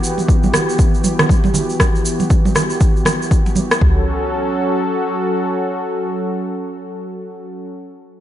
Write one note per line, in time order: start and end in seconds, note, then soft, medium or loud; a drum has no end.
0.00 3.77 E3 medium
0.00 3.77 B3 medium
0.00 3.77 F#4 medium
0.00 3.77 G4 medium
0.00 shaker medium
0.18 muted conga soft
0.18 shaker soft
0.28 kick medium
0.28 shaker soft
0.43 high conga medium
0.43 shaker soft
0.54 cross-stick medium
0.54 muted conga medium
0.54 low conga medium
0.54 shaker medium
0.69 shaker soft
0.79 kick loud
0.79 shaker soft
0.94 shaker soft
1.04 muted conga soft
1.04 high conga medium
1.04 shaker medium
1.19 cross-stick medium
1.19 low conga loud
1.19 shaker soft
1.29 kick loud
1.29 high conga medium
1.29 shaker soft
1.44 muted conga soft
1.44 high conga medium
1.44 shaker soft
1.54 high conga medium
1.54 low conga medium
1.54 shaker medium
1.69 shaker soft
1.80 kick loud
1.80 cross-stick medium
1.80 muted conga medium
1.80 shaker soft
1.95 shaker soft
2.05 shaker medium
2.20 muted conga soft
2.20 high conga medium
2.20 shaker soft
2.30 kick medium
2.30 shaker medium
2.45 high conga medium
2.45 shaker soft
2.55 cross-stick medium
2.55 muted conga soft
2.55 low conga medium
2.55 shaker medium
2.70 shaker soft
2.80 kick loud
2.80 shaker soft
2.96 shaker soft
3.05 cross-stick medium
3.05 muted conga soft
3.05 high conga medium
3.05 low conga medium
3.05 shaker medium
3.22 shaker soft
3.31 kick medium
3.31 shaker soft
3.46 muted conga medium
3.46 shaker soft
3.56 high conga medium
3.56 shaker medium
3.71 cross-stick medium
3.71 shaker soft
3.81 7.70 F#3 medium
3.81 7.69 C#4 medium
3.81 7.70 F#4 medium
3.81 7.70 A4 medium
3.81 kick medium
3.81 floor tom loud